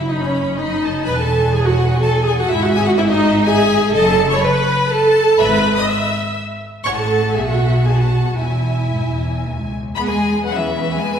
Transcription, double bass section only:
Already playing: F#1
1.07 E1
2.50 G#1
3.95 F#1
5.40 G#1
6.86 A1
7.35 B1
8.39 E1
9.97 E2

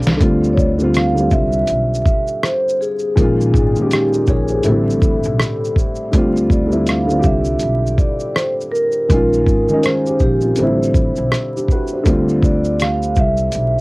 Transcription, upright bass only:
0.06 C2
0.21 D2
1.32 C2
1.70 B1
3.18 A#1
3.54 G#1
4.28 A#1
4.66 A1
5.25 B1
6.14 D2
7.24 C2
7.63 B1
9.10 A#1
9.47 G#1
10.21 A#1
10.59 A1
11.18 B1
12.06 D2
13.17 C2
13.55 B1

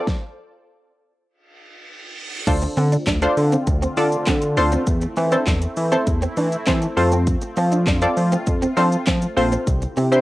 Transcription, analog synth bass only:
2.47 D2
2.77 D3
3.07 D2
3.37 D3
3.67 D2
3.97 D3
4.27 D3
4.57 D2
4.87 E2
5.17 E3
5.47 E2
5.77 E3
6.07 E2
6.37 E3
6.67 E3
6.97 F2
7.57 F3
7.87 F2
8.17 F3
8.47 F2
8.77 F3
9.07 F3
9.37 A#1
9.67 C2
9.97 C3

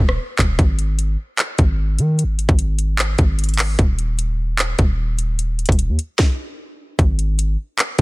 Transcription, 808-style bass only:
0.00 D#1
0.39 D#1
0.59 G#1
1.59 G#1
1.99 D#3
2.24 G#1
2.49 G#1
3.19 G#1
3.79 D#1
4.79 D#1
5.69 D#1
5.89 D#2
6.99 G#1

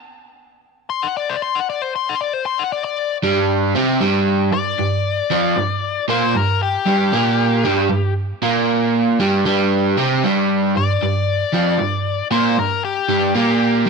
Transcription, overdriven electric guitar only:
3.23 G2 G3
3.75 C3 C4
4.00 G2 G3
4.53 G2
4.79 G2
5.31 F2 F3
5.57 G2
6.08 A#2 A#3
6.35 G2
6.86 G2 G3
7.12 A#2 A#3
7.64 G2 G3
7.90 G2
8.42 A#2 A#3
9.20 G2 G3
9.45 G2 G3
9.97 C3 C4
10.23 G2 G3
10.76 G2
11.03 G2
11.53 F2 F3
11.79 G2
12.31 A#2 A#3
12.57 G2
13.09 G2 G3
13.35 A#2 A#3
13.86 G2 G3

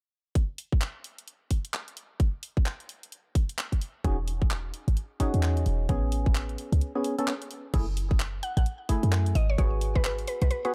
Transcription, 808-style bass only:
4.04 E1
4.88 G#1
5.34 E2
5.66 E1
5.89 A1
6.72 C#2
7.74 F#1
8.57 A1
9.03 F#2
9.35 G#1
9.58 G#1
10.42 B1

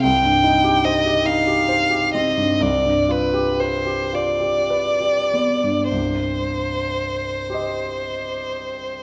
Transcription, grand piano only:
0.03 C2
0.24 G2
0.44 D#4
0.64 G4
0.85 C5
1.06 G4
1.25 D#4
1.47 G4
1.69 C5
1.90 G4
2.15 C4
2.37 G2
2.60 C2
2.85 G2
3.09 F4
3.34 G4
3.60 B4
3.86 G4
4.13 F4
4.40 G4
4.70 B4
5.01 G4
5.34 B3
5.64 G2
5.91 C2 G2
7.50 G4 C5
7.54 D#5

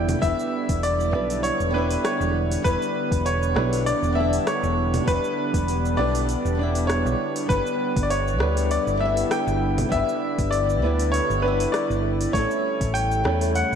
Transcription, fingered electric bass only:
Already playing: E1
0.23 E1
0.69 E1
1.13 B1
1.60 E1
2.20 E1
2.65 E1
3.12 E1
3.56 B1
4.02 E1
4.63 E1
5.07 E1
5.54 E1
5.99 B1
6.45 E1
7.06 B1
7.50 G1
7.96 G1
8.41 D2
8.87 G1
9.47 G1
9.92 G1
10.38 G1
10.83 D2
11.30 G1
11.90 G1
12.34 A1
12.81 A1
13.26 E2

